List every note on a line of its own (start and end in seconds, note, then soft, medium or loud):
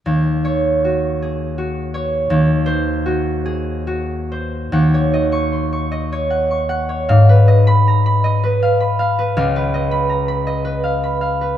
0.06 2.29 D#2 medium
0.45 1.93 C#5 soft
0.85 1.57 F#4 soft
1.22 1.84 G#4 soft
1.58 3.05 F#4 soft
1.94 2.33 C#5 soft
2.30 4.71 D#2 medium
2.66 4.30 C5 medium
3.06 3.86 F#4 medium
3.46 4.19 G#4 soft
3.87 7.13 F#4 soft
4.32 4.78 C5 soft
4.72 7.12 D#2 medium
4.72 6.29 F#5 medium
4.94 6.11 C#5 soft
5.14 5.90 D#5 soft
5.32 5.71 C#6 medium
5.52 5.86 C6 soft
5.73 6.49 C#6 medium
5.92 7.47 D#5 soft
6.12 6.88 C#5 soft
6.30 6.68 F#5 soft
6.51 7.13 C#6 soft
6.69 7.12 F#5 medium
6.89 7.12 C#5 soft
7.09 9.39 G#2 medium
7.09 8.61 F5 medium
7.29 8.42 B4 medium
7.48 8.23 D#5 medium
7.67 8.05 B5 medium
7.88 8.20 A#5 soft
8.06 8.79 B5 medium
8.24 9.73 D#5 medium
8.44 9.17 B4 medium
8.63 8.98 F5 medium
8.80 9.90 B5 medium
8.99 9.35 F5 medium
9.19 9.55 B4 medium
9.37 11.58 C#2 medium
9.37 10.82 F5 medium
9.56 10.63 B4 medium
9.74 10.46 D#5 soft
9.91 10.27 B5 medium
10.09 10.41 A#5 soft
10.28 11.02 B5 medium
10.47 11.58 D#5 medium
10.65 11.40 B4 medium
10.84 11.20 F5 soft
11.04 11.58 B5 soft
11.21 11.58 F5 soft
11.41 11.58 B4 soft